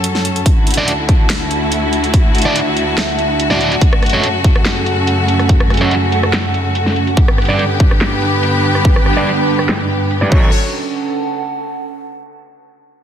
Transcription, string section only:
0.00 0.43 F#2 medium
0.00 0.43 F#3 medium
0.00 0.43 C#4 medium
0.00 0.43 A4 medium
0.46 3.78 D2 medium
0.46 3.78 D3 medium
0.46 3.78 E4 medium
0.46 7.13 F#4 medium
3.82 7.14 F#2 medium
3.82 7.14 C#3 medium
3.82 7.14 A3 medium
7.17 10.29 G2 medium
7.17 10.29 D3 medium
7.17 10.29 B3 medium
7.17 10.29 G4 medium
10.32 10.51 F#3 medium
10.32 10.51 F#4 medium
10.32 10.51 A4 medium
10.32 10.51 C#5 medium

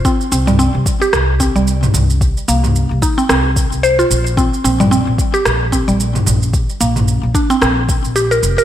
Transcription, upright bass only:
0.32 0.68 C2 medium
0.75 0.83 C2 medium
1.13 1.49 C2 medium
1.56 1.89 C2 medium
1.94 2.30 C2 medium
2.49 2.84 C2 medium
2.91 2.99 C2 medium
3.30 3.65 C2 medium
3.72 4.05 C2 medium
4.10 4.46 A#1 medium
4.64 5.00 A#1 medium
5.07 5.15 A#1 medium
5.45 5.81 A#1 medium
5.88 6.22 A#1 medium
6.27 6.62 A#1 medium
6.81 7.17 A#1 medium
7.23 7.32 A#1 medium
7.62 7.98 A#1 medium
8.04 8.38 A#1 medium
8.43 8.54 F1 medium

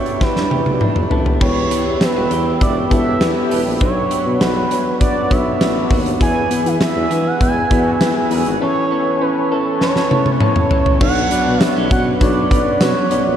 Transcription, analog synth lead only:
0.00 0.23 C#5 medium
0.22 1.11 B4 medium
1.42 2.05 C#5 loud
2.03 2.62 B4 medium
2.63 2.76 D5 medium
2.93 3.48 E5 loud
3.82 4.42 C#5 loud
4.41 5.00 B4 loud
5.00 5.33 D5 loud
5.32 5.91 E5 loud
6.22 6.69 G#5 loud
6.67 6.82 E5 medium
6.82 7.29 E5 loud
7.27 7.42 F#5 medium
7.42 8.28 G#5 loud
8.62 9.23 C#5 loud
9.22 9.53 B4 loud
9.52 9.82 A4 medium
9.82 10.38 C#5 loud
10.43 10.98 C#5 loud
11.02 11.63 F#5 loud
11.63 11.88 E5 loud
11.92 12.05 F#5 medium
12.22 12.82 D5 loud
12.81 13.37 C#5 loud

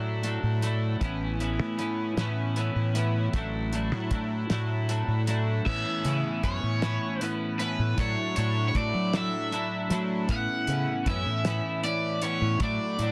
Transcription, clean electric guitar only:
0.00 0.22 A2 medium
0.00 0.22 F#3 medium
0.00 0.24 A3 medium
0.00 0.23 D4 medium
0.00 0.25 E4 medium
0.23 0.61 A2 medium
0.23 0.61 F#3 medium
0.23 0.62 A3 medium
0.23 0.62 D4 medium
0.23 0.64 E4 medium
0.61 0.99 A2 medium
0.61 0.99 F#3 medium
0.61 1.01 A3 medium
0.61 0.99 D4 medium
0.61 1.02 E4 medium
1.00 1.39 A2 medium
1.00 1.40 E3 medium
1.00 1.39 B3 medium
1.00 1.40 C#4 medium
1.00 1.41 E4 loud
1.39 1.77 A2 medium
1.39 1.78 E3 medium
1.39 1.78 B3 medium
1.39 1.78 C#4 medium
1.39 1.79 E4 medium
1.77 2.17 A2 medium
1.77 2.17 E3 medium
1.77 2.17 B3 medium
1.77 2.17 C#4 medium
1.77 2.19 E4 medium
2.17 2.56 A2 medium
2.17 2.56 E3 medium
2.17 2.56 B3 medium
2.17 2.56 C#4 medium
2.17 2.58 E4 medium
2.56 2.94 A2 medium
2.56 2.94 E3 medium
2.56 2.95 B3 medium
2.56 2.95 C#4 medium
2.56 2.96 E4 medium
2.94 3.33 A2 medium
2.94 3.34 E3 medium
2.94 3.32 B3 medium
2.94 3.32 C#4 medium
2.94 3.36 E4 medium
3.34 3.71 A2 medium
3.34 3.72 F#3 medium
3.34 3.72 A3 medium
3.34 3.73 D4 medium
3.34 3.74 E4 medium
3.73 4.09 A2 medium
3.73 4.10 F#3 medium
3.73 4.11 A3 medium
3.73 4.11 D4 medium
3.73 4.12 E4 medium
4.11 4.48 A2 medium
4.11 4.49 F#3 medium
4.11 4.50 A3 medium
4.11 4.50 D4 medium
4.11 4.51 E4 medium
4.50 4.87 A2 medium
4.50 4.87 F#3 medium
4.50 4.88 A3 medium
4.50 4.88 D4 medium
4.50 4.89 E4 medium
4.88 5.25 A2 medium
4.88 5.26 F#3 medium
4.88 5.27 A3 medium
4.88 5.27 D4 medium
4.88 5.28 E4 medium
5.27 5.63 A2 medium
5.27 5.63 F#3 medium
5.27 5.64 A3 medium
5.27 5.64 D4 medium
5.27 5.64 E4 medium
5.65 6.03 A2 medium
5.65 6.04 E3 medium
5.65 6.04 B3 medium
5.65 6.04 C#4 loud
5.65 6.06 E4 medium
6.04 6.42 A2 medium
6.04 6.43 E3 medium
6.04 6.43 B3 medium
6.04 6.44 C#4 medium
6.04 6.45 E4 medium
6.43 6.81 A2 medium
6.43 6.82 E3 medium
6.43 6.81 B3 medium
6.43 6.83 C#4 medium
6.43 6.83 E4 medium
6.81 7.20 A2 medium
6.81 7.21 E3 medium
6.81 7.21 B3 medium
6.81 7.21 C#4 medium
6.81 7.23 E4 medium
7.20 7.58 A2 medium
7.20 7.59 E3 medium
7.20 7.59 B3 medium
7.20 7.59 C#4 medium
7.20 7.60 E4 medium
7.59 7.97 A2 medium
7.59 7.98 E3 medium
7.59 7.96 B3 medium
7.59 7.96 C#4 medium
7.59 7.99 E4 medium
7.97 8.35 A2 medium
7.97 8.35 F#3 medium
7.97 8.36 A3 medium
7.97 8.36 D4 loud
7.97 8.38 E4 medium
8.36 8.73 A2 medium
8.36 8.73 F#3 medium
8.36 8.75 A3 medium
8.36 8.74 D4 medium
8.36 8.76 E4 medium
8.74 9.13 A2 medium
8.74 9.13 F#3 medium
8.74 9.14 A3 medium
8.74 9.14 D4 medium
8.74 9.15 E4 medium
9.13 9.51 A2 medium
9.13 9.51 F#3 medium
9.13 9.53 A3 medium
9.13 9.52 D4 medium
9.13 9.53 E4 medium
9.52 9.90 A2 medium
9.52 9.90 F#3 medium
9.52 9.91 A3 medium
9.52 9.91 D4 medium
9.52 9.92 E4 loud
9.90 10.29 A2 medium
9.90 10.27 F#3 medium
9.90 10.30 A3 medium
9.90 10.28 D4 medium
9.90 10.31 E4 medium
10.30 10.68 E3 loud
10.30 10.68 B3 loud
10.30 10.69 C#4 loud
10.30 10.70 E4 loud
10.68 11.06 A2 medium
10.68 11.07 E3 medium
10.68 11.06 B3 medium
10.68 11.07 C#4 medium
10.68 11.08 E4 medium
11.06 11.44 A2 medium
11.06 11.45 E3 medium
11.06 11.44 B3 medium
11.06 11.45 C#4 medium
11.06 11.47 E4 medium
11.45 11.83 A2 medium
11.45 11.84 E3 medium
11.45 11.83 B3 medium
11.45 11.83 C#4 medium
11.45 11.85 E4 medium
11.83 12.21 A2 medium
11.83 12.22 E3 medium
11.83 12.21 B3 medium
11.83 12.22 C#4 loud
11.83 12.23 E4 medium
12.21 12.59 A2 medium
12.21 12.60 E3 medium
12.21 12.58 B3 medium
12.21 12.59 C#4 medium
12.21 12.62 E4 medium
12.60 12.98 A2 medium
12.60 12.98 F#3 loud
12.60 12.99 A3 loud
12.60 12.99 D4 loud
12.60 13.01 E4 medium
12.99 13.12 A2 medium
12.99 13.12 F#3 medium
12.99 13.12 A3 medium
12.99 13.12 D4 medium
12.99 13.12 E4 medium

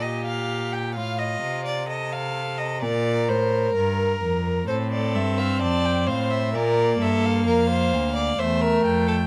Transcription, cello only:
0.00 0.98 A#2 medium
0.96 1.43 A2 medium
1.43 2.84 C3 medium
2.82 3.30 A#2 medium
3.29 3.75 A2 medium
3.75 4.20 G2 medium
4.22 4.67 F2 medium
4.68 5.16 A2 medium
5.15 5.63 G2 medium
5.61 6.09 F2 medium
6.08 6.55 A2 medium
6.54 6.99 A#2 medium
7.00 7.47 G2 medium
7.46 7.94 F2 medium
7.93 8.38 D2 medium
8.39 8.84 E2 medium
8.85 9.27 F2 medium

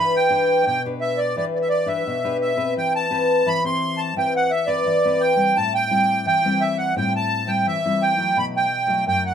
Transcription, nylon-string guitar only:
0.00 0.63 E3 medium
0.00 0.26 D4 medium
0.00 0.26 G4 medium
0.00 0.26 B4 medium
0.30 0.78 D4 medium
0.30 0.78 G4 medium
0.30 0.78 B4 medium
0.66 1.33 B2 medium
0.85 1.32 D4 medium
0.85 1.32 G4 medium
0.85 1.32 B4 medium
1.36 2.03 E3 medium
1.36 1.83 D4 medium
1.36 1.84 G4 medium
1.36 1.84 B4 medium
1.86 2.17 D4 medium
1.86 2.17 G4 medium
1.86 2.18 B4 medium
2.07 2.73 B2 medium
2.24 2.54 D4 medium
2.24 2.54 G4 medium
2.24 2.54 B4 medium
2.57 3.05 C4 medium
2.57 3.05 G4 medium
2.57 3.05 B4 medium
2.76 3.43 E3 medium
3.10 3.58 C4 medium
3.10 3.58 G4 medium
3.10 3.58 B4 medium
3.46 4.13 E3 medium
3.64 4.11 C4 medium
3.64 4.11 G4 medium
4.16 4.83 E3 medium
4.16 4.49 C4 medium
4.16 4.50 G4 medium
4.16 4.50 B4 medium
4.67 4.97 C4 medium
4.67 4.97 G4 medium
4.67 4.98 B4 medium
4.86 5.53 E3 medium
5.05 5.34 C4 medium
5.05 5.34 G4 medium
5.05 5.34 B4 medium
5.36 5.84 G3 medium
5.36 5.85 C4 medium
5.36 5.85 E4 medium
5.57 6.23 A2 medium
5.90 6.38 G3 medium
5.90 6.38 C4 medium
5.90 6.38 E4 medium
6.26 6.93 E3 medium
6.45 6.91 G3 medium
6.45 6.92 C4 medium
6.45 6.92 E4 medium
6.96 7.63 A2 medium
6.96 7.43 G3 medium
6.96 7.43 C4 medium
6.96 7.44 E4 medium
7.46 7.77 G3 medium
7.46 7.77 C4 medium
7.46 7.78 E4 medium
7.66 8.33 E3 medium
7.85 8.14 G3 medium
7.85 8.14 C4 medium
7.85 8.14 E4 medium
8.16 8.65 F#3 medium
8.16 8.65 A3 medium
8.16 8.65 E4 medium
8.36 9.03 B2 medium
8.87 9.34 F#3 medium
8.87 9.34 A3 medium
8.87 9.34 E4 medium
9.07 9.34 F#2 medium

